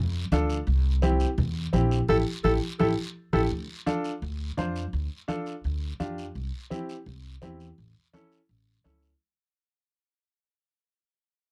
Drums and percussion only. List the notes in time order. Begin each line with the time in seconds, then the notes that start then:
0.32 high conga, short guiro
0.50 short guiro
0.67 long guiro
1.02 high conga, short guiro
1.20 short guiro
1.38 low conga, long guiro
1.73 high conga, short guiro
1.91 short guiro
2.08 high conga, long guiro
2.44 high conga, long guiro
2.79 high conga, long guiro
3.33 high conga, long guiro
3.51 long guiro
3.87 high conga, short guiro
4.04 short guiro
4.22 long guiro
4.58 high conga, short guiro
4.76 short guiro
4.93 long guiro
5.29 high conga, short guiro
5.46 short guiro
5.64 long guiro
6.00 high conga, short guiro
6.18 short guiro
6.36 long guiro
6.71 high conga, short guiro
6.89 short guiro
7.06 long guiro
7.42 high conga, short guiro
7.60 short guiro
7.78 long guiro
8.14 high conga, short guiro
8.32 short guiro
8.49 long guiro
8.85 high conga, short guiro
9.02 short guiro